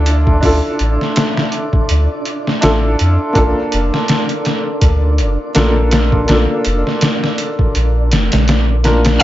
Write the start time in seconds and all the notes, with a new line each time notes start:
Already playing: D2 D4 E4 F4 A4 D5
0.06 closed hi-hat
0.27 kick
0.41 D2 D4 E4 F4, kick, open hi-hat
0.45 A4
0.79 A1, closed hi-hat
1.01 snare
1.16 snare, closed hi-hat
1.37 snare
1.52 closed hi-hat
1.73 kick
1.89 D2, closed hi-hat
2.25 closed hi-hat
2.47 snare
2.61 A1 D4 E4 F4 A4, snare, closed hi-hat
2.99 F2, closed hi-hat
3.33 A#1 A#3 D4 F4, kick, closed hi-hat
3.38 A4
3.72 F1, closed hi-hat
3.94 snare
4.08 snare, closed hi-hat
4.29 closed hi-hat
4.45 snare, closed hi-hat
4.81 D2, kick, closed hi-hat
5.18 F1, closed hi-hat
5.55 A#1 A#3 D4 F4 A4, snare, closed hi-hat
5.91 snare, closed hi-hat
6.12 kick
6.26 A#1 A#3 D4 F4, snare, closed hi-hat
6.31 A4
6.65 F1, closed hi-hat
6.87 snare
7.01 snare, closed hi-hat
7.24 snare
7.38 closed hi-hat
7.59 kick
7.75 A#1, closed hi-hat
8.12 F1, snare, closed hi-hat
8.32 A#1, snare, closed hi-hat
8.48 snare, closed hi-hat
8.84 A#3 D4 F4 A#4, snare, closed hi-hat
9.05 snare, closed hi-hat
9.19 D4